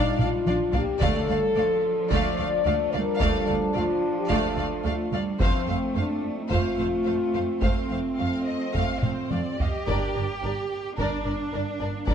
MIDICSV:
0, 0, Header, 1, 10, 480
1, 0, Start_track
1, 0, Key_signature, -2, "minor"
1, 0, Tempo, 548446
1, 879, Time_signature, 4, 2, 24, 8
1, 5204, Tempo, 561798
1, 8564, Tempo, 549954
1, 10541, End_track
2, 0, Start_track
2, 0, Title_t, "Violin section"
2, 0, Program_c, 0, 48
2, 0, Note_on_c, 0, 77, 79
2, 152, Note_off_c, 0, 77, 0
2, 173, Note_on_c, 0, 77, 59
2, 243, Note_off_c, 0, 77, 0
2, 409, Note_on_c, 0, 77, 51
2, 479, Note_off_c, 0, 77, 0
2, 638, Note_on_c, 0, 77, 62
2, 708, Note_off_c, 0, 77, 0
2, 888, Note_on_c, 0, 77, 77
2, 1106, Note_off_c, 0, 77, 0
2, 1139, Note_on_c, 0, 77, 53
2, 1209, Note_off_c, 0, 77, 0
2, 1377, Note_on_c, 0, 77, 59
2, 1447, Note_off_c, 0, 77, 0
2, 1858, Note_on_c, 0, 77, 74
2, 2075, Note_off_c, 0, 77, 0
2, 2092, Note_on_c, 0, 77, 64
2, 2162, Note_off_c, 0, 77, 0
2, 2331, Note_on_c, 0, 77, 66
2, 2401, Note_off_c, 0, 77, 0
2, 2562, Note_on_c, 0, 77, 60
2, 2632, Note_off_c, 0, 77, 0
2, 2792, Note_on_c, 0, 77, 79
2, 3019, Note_off_c, 0, 77, 0
2, 3033, Note_on_c, 0, 77, 51
2, 3103, Note_off_c, 0, 77, 0
2, 3280, Note_on_c, 0, 77, 57
2, 3350, Note_off_c, 0, 77, 0
2, 3753, Note_on_c, 0, 77, 71
2, 3979, Note_off_c, 0, 77, 0
2, 4010, Note_on_c, 0, 77, 58
2, 4080, Note_off_c, 0, 77, 0
2, 4245, Note_on_c, 0, 77, 59
2, 4315, Note_off_c, 0, 77, 0
2, 4493, Note_on_c, 0, 77, 52
2, 4563, Note_off_c, 0, 77, 0
2, 4736, Note_on_c, 0, 77, 69
2, 4954, Note_off_c, 0, 77, 0
2, 4980, Note_on_c, 0, 77, 51
2, 5050, Note_off_c, 0, 77, 0
2, 5218, Note_on_c, 0, 77, 50
2, 5287, Note_off_c, 0, 77, 0
2, 5678, Note_on_c, 0, 77, 57
2, 5898, Note_off_c, 0, 77, 0
2, 5912, Note_on_c, 0, 77, 43
2, 5980, Note_off_c, 0, 77, 0
2, 6150, Note_on_c, 0, 77, 44
2, 6218, Note_off_c, 0, 77, 0
2, 6397, Note_on_c, 0, 77, 44
2, 6466, Note_off_c, 0, 77, 0
2, 6635, Note_on_c, 0, 77, 52
2, 6860, Note_off_c, 0, 77, 0
2, 6874, Note_on_c, 0, 77, 41
2, 6943, Note_off_c, 0, 77, 0
2, 7111, Note_on_c, 0, 77, 33
2, 7179, Note_off_c, 0, 77, 0
2, 7596, Note_on_c, 0, 77, 56
2, 7819, Note_off_c, 0, 77, 0
2, 7829, Note_on_c, 0, 77, 40
2, 7898, Note_off_c, 0, 77, 0
2, 8083, Note_on_c, 0, 77, 37
2, 8152, Note_off_c, 0, 77, 0
2, 8328, Note_on_c, 0, 77, 45
2, 8397, Note_off_c, 0, 77, 0
2, 8557, Note_on_c, 0, 74, 61
2, 8784, Note_off_c, 0, 74, 0
2, 8804, Note_on_c, 0, 74, 36
2, 8874, Note_off_c, 0, 74, 0
2, 9059, Note_on_c, 0, 74, 40
2, 9129, Note_off_c, 0, 74, 0
2, 9538, Note_on_c, 0, 74, 59
2, 9755, Note_off_c, 0, 74, 0
2, 9768, Note_on_c, 0, 74, 49
2, 9838, Note_off_c, 0, 74, 0
2, 10011, Note_on_c, 0, 74, 44
2, 10081, Note_off_c, 0, 74, 0
2, 10251, Note_on_c, 0, 74, 44
2, 10321, Note_off_c, 0, 74, 0
2, 10492, Note_on_c, 0, 74, 58
2, 10541, Note_off_c, 0, 74, 0
2, 10541, End_track
3, 0, Start_track
3, 0, Title_t, "Violin section"
3, 0, Program_c, 1, 48
3, 0, Note_on_c, 1, 74, 75
3, 150, Note_off_c, 1, 74, 0
3, 175, Note_on_c, 1, 74, 59
3, 245, Note_off_c, 1, 74, 0
3, 410, Note_on_c, 1, 74, 66
3, 480, Note_off_c, 1, 74, 0
3, 641, Note_on_c, 1, 74, 58
3, 711, Note_off_c, 1, 74, 0
3, 879, Note_on_c, 1, 74, 74
3, 1101, Note_off_c, 1, 74, 0
3, 1120, Note_on_c, 1, 74, 57
3, 1190, Note_off_c, 1, 74, 0
3, 1358, Note_on_c, 1, 74, 56
3, 1428, Note_off_c, 1, 74, 0
3, 1843, Note_on_c, 1, 74, 77
3, 2067, Note_off_c, 1, 74, 0
3, 2079, Note_on_c, 1, 74, 54
3, 2149, Note_off_c, 1, 74, 0
3, 2324, Note_on_c, 1, 74, 61
3, 2394, Note_off_c, 1, 74, 0
3, 2564, Note_on_c, 1, 74, 58
3, 2634, Note_off_c, 1, 74, 0
3, 2801, Note_on_c, 1, 74, 68
3, 3018, Note_off_c, 1, 74, 0
3, 3029, Note_on_c, 1, 74, 48
3, 3099, Note_off_c, 1, 74, 0
3, 3270, Note_on_c, 1, 74, 60
3, 3340, Note_off_c, 1, 74, 0
3, 3761, Note_on_c, 1, 74, 69
3, 3983, Note_off_c, 1, 74, 0
3, 4002, Note_on_c, 1, 74, 54
3, 4072, Note_off_c, 1, 74, 0
3, 4243, Note_on_c, 1, 74, 53
3, 4314, Note_off_c, 1, 74, 0
3, 4492, Note_on_c, 1, 74, 59
3, 4562, Note_off_c, 1, 74, 0
3, 4731, Note_on_c, 1, 72, 65
3, 4951, Note_off_c, 1, 72, 0
3, 4973, Note_on_c, 1, 72, 45
3, 5043, Note_off_c, 1, 72, 0
3, 5205, Note_on_c, 1, 72, 46
3, 5274, Note_off_c, 1, 72, 0
3, 5678, Note_on_c, 1, 72, 65
3, 5898, Note_off_c, 1, 72, 0
3, 5919, Note_on_c, 1, 72, 50
3, 5987, Note_off_c, 1, 72, 0
3, 6153, Note_on_c, 1, 72, 48
3, 6221, Note_off_c, 1, 72, 0
3, 6396, Note_on_c, 1, 72, 44
3, 6465, Note_off_c, 1, 72, 0
3, 6633, Note_on_c, 1, 72, 48
3, 6858, Note_off_c, 1, 72, 0
3, 6882, Note_on_c, 1, 72, 38
3, 6950, Note_off_c, 1, 72, 0
3, 7124, Note_on_c, 1, 77, 58
3, 7345, Note_off_c, 1, 77, 0
3, 7355, Note_on_c, 1, 75, 54
3, 7591, Note_off_c, 1, 75, 0
3, 7605, Note_on_c, 1, 77, 58
3, 7838, Note_on_c, 1, 72, 50
3, 7841, Note_off_c, 1, 77, 0
3, 8080, Note_off_c, 1, 72, 0
3, 8085, Note_on_c, 1, 74, 54
3, 8326, Note_off_c, 1, 74, 0
3, 8335, Note_on_c, 1, 75, 47
3, 8569, Note_off_c, 1, 75, 0
3, 8569, Note_on_c, 1, 70, 55
3, 8791, Note_off_c, 1, 70, 0
3, 8800, Note_on_c, 1, 70, 39
3, 8870, Note_off_c, 1, 70, 0
3, 9045, Note_on_c, 1, 70, 40
3, 9115, Note_off_c, 1, 70, 0
3, 9527, Note_on_c, 1, 70, 60
3, 9749, Note_off_c, 1, 70, 0
3, 9759, Note_on_c, 1, 70, 42
3, 9829, Note_off_c, 1, 70, 0
3, 10005, Note_on_c, 1, 70, 44
3, 10075, Note_off_c, 1, 70, 0
3, 10247, Note_on_c, 1, 70, 41
3, 10317, Note_off_c, 1, 70, 0
3, 10491, Note_on_c, 1, 70, 49
3, 10541, Note_off_c, 1, 70, 0
3, 10541, End_track
4, 0, Start_track
4, 0, Title_t, "French horn section"
4, 0, Program_c, 2, 60
4, 0, Note_on_c, 2, 63, 84
4, 168, Note_off_c, 2, 63, 0
4, 192, Note_on_c, 2, 65, 85
4, 655, Note_off_c, 2, 65, 0
4, 668, Note_on_c, 2, 67, 84
4, 893, Note_off_c, 2, 67, 0
4, 904, Note_on_c, 2, 69, 117
4, 1837, Note_off_c, 2, 69, 0
4, 1852, Note_on_c, 2, 74, 106
4, 2552, Note_off_c, 2, 74, 0
4, 2561, Note_on_c, 2, 70, 88
4, 2800, Note_off_c, 2, 70, 0
4, 2813, Note_on_c, 2, 69, 93
4, 3286, Note_off_c, 2, 69, 0
4, 3288, Note_on_c, 2, 65, 87
4, 3644, Note_off_c, 2, 65, 0
4, 3667, Note_on_c, 2, 67, 82
4, 3773, Note_off_c, 2, 67, 0
4, 3783, Note_on_c, 2, 69, 91
4, 4252, Note_off_c, 2, 69, 0
4, 4269, Note_on_c, 2, 65, 74
4, 4496, Note_off_c, 2, 65, 0
4, 4746, Note_on_c, 2, 60, 94
4, 5183, Note_off_c, 2, 60, 0
4, 5228, Note_on_c, 2, 62, 78
4, 5569, Note_on_c, 2, 63, 68
4, 5571, Note_off_c, 2, 62, 0
4, 5680, Note_off_c, 2, 63, 0
4, 5692, Note_on_c, 2, 65, 89
4, 6620, Note_off_c, 2, 65, 0
4, 6641, Note_on_c, 2, 57, 71
4, 8294, Note_off_c, 2, 57, 0
4, 8560, Note_on_c, 2, 62, 62
4, 8561, Note_on_c, 2, 58, 63
4, 10541, Note_off_c, 2, 58, 0
4, 10541, Note_off_c, 2, 62, 0
4, 10541, End_track
5, 0, Start_track
5, 0, Title_t, "Cello section"
5, 0, Program_c, 3, 48
5, 0, Note_on_c, 3, 55, 71
5, 400, Note_off_c, 3, 55, 0
5, 404, Note_on_c, 3, 53, 58
5, 640, Note_on_c, 3, 58, 68
5, 641, Note_off_c, 3, 53, 0
5, 879, Note_off_c, 3, 58, 0
5, 882, Note_on_c, 3, 57, 67
5, 1113, Note_on_c, 3, 55, 61
5, 1115, Note_off_c, 3, 57, 0
5, 1355, Note_off_c, 3, 55, 0
5, 1355, Note_on_c, 3, 53, 67
5, 2303, Note_off_c, 3, 53, 0
5, 2314, Note_on_c, 3, 57, 67
5, 2551, Note_on_c, 3, 55, 72
5, 2552, Note_off_c, 3, 57, 0
5, 3274, Note_off_c, 3, 55, 0
5, 3284, Note_on_c, 3, 53, 62
5, 4233, Note_on_c, 3, 57, 62
5, 4242, Note_off_c, 3, 53, 0
5, 4478, Note_off_c, 3, 57, 0
5, 4478, Note_on_c, 3, 55, 60
5, 4716, Note_off_c, 3, 55, 0
5, 4721, Note_on_c, 3, 53, 58
5, 4962, Note_off_c, 3, 53, 0
5, 4968, Note_on_c, 3, 57, 67
5, 5670, Note_off_c, 3, 57, 0
5, 5680, Note_on_c, 3, 57, 61
5, 6614, Note_off_c, 3, 57, 0
5, 6628, Note_on_c, 3, 60, 52
5, 8317, Note_on_c, 3, 67, 65
5, 8321, Note_off_c, 3, 60, 0
5, 9487, Note_off_c, 3, 67, 0
5, 9523, Note_on_c, 3, 62, 62
5, 10469, Note_off_c, 3, 62, 0
5, 10480, Note_on_c, 3, 62, 70
5, 10541, Note_off_c, 3, 62, 0
5, 10541, End_track
6, 0, Start_track
6, 0, Title_t, "Viola section"
6, 0, Program_c, 4, 48
6, 0, Note_on_c, 4, 62, 75
6, 154, Note_off_c, 4, 62, 0
6, 177, Note_on_c, 4, 62, 61
6, 247, Note_off_c, 4, 62, 0
6, 421, Note_on_c, 4, 62, 62
6, 491, Note_off_c, 4, 62, 0
6, 651, Note_on_c, 4, 62, 58
6, 721, Note_off_c, 4, 62, 0
6, 893, Note_on_c, 4, 57, 66
6, 1109, Note_off_c, 4, 57, 0
6, 1129, Note_on_c, 4, 57, 45
6, 1199, Note_off_c, 4, 57, 0
6, 1370, Note_on_c, 4, 57, 57
6, 1440, Note_off_c, 4, 57, 0
6, 1846, Note_on_c, 4, 57, 79
6, 2069, Note_off_c, 4, 57, 0
6, 2095, Note_on_c, 4, 57, 57
6, 2165, Note_off_c, 4, 57, 0
6, 2331, Note_on_c, 4, 57, 66
6, 2401, Note_off_c, 4, 57, 0
6, 2574, Note_on_c, 4, 57, 60
6, 2645, Note_off_c, 4, 57, 0
6, 2816, Note_on_c, 4, 57, 66
6, 3031, Note_off_c, 4, 57, 0
6, 3049, Note_on_c, 4, 57, 48
6, 3119, Note_off_c, 4, 57, 0
6, 3295, Note_on_c, 4, 57, 49
6, 3365, Note_off_c, 4, 57, 0
6, 3763, Note_on_c, 4, 57, 73
6, 3985, Note_off_c, 4, 57, 0
6, 4008, Note_on_c, 4, 57, 60
6, 4078, Note_off_c, 4, 57, 0
6, 4240, Note_on_c, 4, 57, 62
6, 4310, Note_off_c, 4, 57, 0
6, 4487, Note_on_c, 4, 57, 56
6, 4557, Note_off_c, 4, 57, 0
6, 4727, Note_on_c, 4, 57, 57
6, 4949, Note_off_c, 4, 57, 0
6, 4969, Note_on_c, 4, 57, 45
6, 5039, Note_off_c, 4, 57, 0
6, 5207, Note_on_c, 4, 57, 48
6, 5276, Note_off_c, 4, 57, 0
6, 5678, Note_on_c, 4, 57, 51
6, 5898, Note_off_c, 4, 57, 0
6, 5918, Note_on_c, 4, 57, 46
6, 5987, Note_off_c, 4, 57, 0
6, 6148, Note_on_c, 4, 57, 52
6, 6217, Note_off_c, 4, 57, 0
6, 6388, Note_on_c, 4, 57, 45
6, 6456, Note_off_c, 4, 57, 0
6, 6627, Note_on_c, 4, 57, 47
6, 6855, Note_off_c, 4, 57, 0
6, 6872, Note_on_c, 4, 57, 41
6, 6940, Note_off_c, 4, 57, 0
6, 7114, Note_on_c, 4, 57, 39
6, 7182, Note_off_c, 4, 57, 0
6, 7593, Note_on_c, 4, 57, 47
6, 7817, Note_off_c, 4, 57, 0
6, 7840, Note_on_c, 4, 57, 41
6, 7908, Note_off_c, 4, 57, 0
6, 8080, Note_on_c, 4, 57, 44
6, 8148, Note_off_c, 4, 57, 0
6, 8331, Note_on_c, 4, 57, 38
6, 8399, Note_off_c, 4, 57, 0
6, 8567, Note_on_c, 4, 62, 47
6, 8790, Note_off_c, 4, 62, 0
6, 8806, Note_on_c, 4, 62, 38
6, 8875, Note_off_c, 4, 62, 0
6, 9040, Note_on_c, 4, 62, 40
6, 9109, Note_off_c, 4, 62, 0
6, 9526, Note_on_c, 4, 62, 52
6, 9749, Note_off_c, 4, 62, 0
6, 9765, Note_on_c, 4, 62, 42
6, 9835, Note_off_c, 4, 62, 0
6, 10002, Note_on_c, 4, 62, 48
6, 10072, Note_off_c, 4, 62, 0
6, 10236, Note_on_c, 4, 62, 44
6, 10306, Note_off_c, 4, 62, 0
6, 10477, Note_on_c, 4, 62, 51
6, 10541, Note_off_c, 4, 62, 0
6, 10541, End_track
7, 0, Start_track
7, 0, Title_t, "Trombone section"
7, 0, Program_c, 5, 61
7, 0, Note_on_c, 5, 53, 58
7, 0, Note_on_c, 5, 62, 59
7, 729, Note_off_c, 5, 53, 0
7, 729, Note_off_c, 5, 62, 0
7, 877, Note_on_c, 5, 53, 71
7, 880, Note_on_c, 5, 62, 76
7, 4686, Note_off_c, 5, 53, 0
7, 4687, Note_off_c, 5, 62, 0
7, 4729, Note_on_c, 5, 60, 63
7, 4736, Note_on_c, 5, 53, 65
7, 8292, Note_off_c, 5, 60, 0
7, 8296, Note_off_c, 5, 53, 0
7, 10541, End_track
8, 0, Start_track
8, 0, Title_t, "Timpani"
8, 0, Program_c, 6, 47
8, 885, Note_on_c, 6, 50, 71
8, 1568, Note_off_c, 6, 50, 0
8, 10541, End_track
9, 0, Start_track
9, 0, Title_t, "Double bass section"
9, 0, Program_c, 7, 48
9, 164, Note_on_c, 7, 34, 52
9, 234, Note_off_c, 7, 34, 0
9, 401, Note_on_c, 7, 34, 62
9, 471, Note_off_c, 7, 34, 0
9, 637, Note_on_c, 7, 34, 58
9, 707, Note_off_c, 7, 34, 0
9, 877, Note_on_c, 7, 38, 78
9, 947, Note_off_c, 7, 38, 0
9, 1117, Note_on_c, 7, 38, 63
9, 1187, Note_off_c, 7, 38, 0
9, 1365, Note_on_c, 7, 38, 55
9, 1435, Note_off_c, 7, 38, 0
9, 1849, Note_on_c, 7, 38, 79
9, 1919, Note_off_c, 7, 38, 0
9, 2088, Note_on_c, 7, 38, 56
9, 2158, Note_off_c, 7, 38, 0
9, 2325, Note_on_c, 7, 38, 63
9, 2395, Note_off_c, 7, 38, 0
9, 2567, Note_on_c, 7, 38, 55
9, 2637, Note_off_c, 7, 38, 0
9, 2807, Note_on_c, 7, 38, 77
9, 2877, Note_off_c, 7, 38, 0
9, 3044, Note_on_c, 7, 38, 60
9, 3114, Note_off_c, 7, 38, 0
9, 3282, Note_on_c, 7, 38, 55
9, 3352, Note_off_c, 7, 38, 0
9, 3759, Note_on_c, 7, 38, 78
9, 3829, Note_off_c, 7, 38, 0
9, 3995, Note_on_c, 7, 38, 52
9, 4065, Note_off_c, 7, 38, 0
9, 4236, Note_on_c, 7, 38, 53
9, 4306, Note_off_c, 7, 38, 0
9, 4478, Note_on_c, 7, 38, 50
9, 4548, Note_off_c, 7, 38, 0
9, 4720, Note_on_c, 7, 41, 69
9, 4790, Note_off_c, 7, 41, 0
9, 4966, Note_on_c, 7, 41, 53
9, 5036, Note_off_c, 7, 41, 0
9, 5205, Note_on_c, 7, 41, 48
9, 5273, Note_off_c, 7, 41, 0
9, 5679, Note_on_c, 7, 41, 68
9, 5748, Note_off_c, 7, 41, 0
9, 5916, Note_on_c, 7, 41, 46
9, 5985, Note_off_c, 7, 41, 0
9, 6157, Note_on_c, 7, 41, 49
9, 6225, Note_off_c, 7, 41, 0
9, 6397, Note_on_c, 7, 41, 41
9, 6465, Note_off_c, 7, 41, 0
9, 6636, Note_on_c, 7, 41, 58
9, 6705, Note_off_c, 7, 41, 0
9, 6880, Note_on_c, 7, 41, 42
9, 6948, Note_off_c, 7, 41, 0
9, 7125, Note_on_c, 7, 41, 41
9, 7194, Note_off_c, 7, 41, 0
9, 7597, Note_on_c, 7, 41, 59
9, 7666, Note_off_c, 7, 41, 0
9, 7840, Note_on_c, 7, 41, 38
9, 7909, Note_off_c, 7, 41, 0
9, 8088, Note_on_c, 7, 41, 43
9, 8156, Note_off_c, 7, 41, 0
9, 8332, Note_on_c, 7, 41, 37
9, 8401, Note_off_c, 7, 41, 0
9, 8573, Note_on_c, 7, 31, 57
9, 8643, Note_off_c, 7, 31, 0
9, 8810, Note_on_c, 7, 31, 45
9, 8880, Note_off_c, 7, 31, 0
9, 9050, Note_on_c, 7, 31, 39
9, 9120, Note_off_c, 7, 31, 0
9, 9530, Note_on_c, 7, 31, 61
9, 9600, Note_off_c, 7, 31, 0
9, 9769, Note_on_c, 7, 31, 42
9, 9839, Note_off_c, 7, 31, 0
9, 10009, Note_on_c, 7, 31, 46
9, 10079, Note_off_c, 7, 31, 0
9, 10255, Note_on_c, 7, 31, 41
9, 10324, Note_off_c, 7, 31, 0
9, 10486, Note_on_c, 7, 31, 57
9, 10541, Note_off_c, 7, 31, 0
9, 10541, End_track
10, 0, Start_track
10, 0, Title_t, "Taiko and cinematic ensemble drums"
10, 165, Note_on_c, 9, 47, 75
10, 253, Note_off_c, 9, 47, 0
10, 406, Note_on_c, 9, 48, 77
10, 493, Note_off_c, 9, 48, 0
10, 642, Note_on_c, 9, 43, 84
10, 729, Note_off_c, 9, 43, 0
10, 887, Note_on_c, 9, 41, 85
10, 974, Note_off_c, 9, 41, 0
10, 1844, Note_on_c, 9, 41, 78
10, 1932, Note_off_c, 9, 41, 0
10, 2799, Note_on_c, 9, 41, 87
10, 2886, Note_off_c, 9, 41, 0
10, 3762, Note_on_c, 9, 41, 74
10, 3850, Note_off_c, 9, 41, 0
10, 4728, Note_on_c, 9, 41, 91
10, 4815, Note_off_c, 9, 41, 0
10, 5677, Note_on_c, 9, 41, 78
10, 5763, Note_off_c, 9, 41, 0
10, 6631, Note_on_c, 9, 41, 89
10, 6717, Note_off_c, 9, 41, 0
10, 7595, Note_on_c, 9, 41, 74
10, 7680, Note_off_c, 9, 41, 0
10, 7835, Note_on_c, 9, 47, 72
10, 7920, Note_off_c, 9, 47, 0
10, 8077, Note_on_c, 9, 48, 69
10, 8162, Note_off_c, 9, 48, 0
10, 8328, Note_on_c, 9, 43, 82
10, 8414, Note_off_c, 9, 43, 0
10, 8560, Note_on_c, 9, 41, 82
10, 8647, Note_off_c, 9, 41, 0
10, 9522, Note_on_c, 9, 41, 74
10, 9609, Note_off_c, 9, 41, 0
10, 10483, Note_on_c, 9, 41, 82
10, 10541, Note_off_c, 9, 41, 0
10, 10541, End_track
0, 0, End_of_file